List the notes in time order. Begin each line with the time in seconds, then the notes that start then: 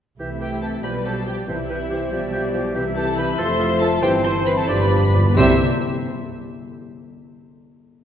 0.19 C2 C3 E3 A3 E4 G4 E5
0.41 E3 G4 G5
0.62 E3 G4 A4 A5
0.83 B1 B2 F3 G3 G4 B4 D5 B5
1.05 F3 G4 A4 A5
1.26 F3 G4 G5
1.48 C2 C3 E3 G3 E4 G4 C5 E5
1.70 E3 E4 G4 B4
1.90 E3 G4 C5
2.11 B1 B2 F3 G4 D5
2.33 F3 G4
2.53 F3 G4
2.75 C2 C3 E3 G3 E4 G4 E5
2.96 E3 G4 A4 A5
3.17 E3 G4 B4 B5
3.38 F1 F2 F3 A3 F4 A4 C5 C6
3.60 F3 A4
3.81 F3 A4 A5
4.02 G1 G2 E3 C4 E4 G4 C5 G5
4.24 E3 C5 C6
4.46 E3 B4 C5 B5
4.57 A4 A5
4.68 G1 G2 F3 D4 G4 B4 D5 B5
4.77 G2
4.85 G2
4.91 G2 F3 D5
5.01 G2
5.09 G2
5.14 G2 F3 D5
5.25 G2
5.36 C2 C3 G3 C4 G4 C5 E5 E6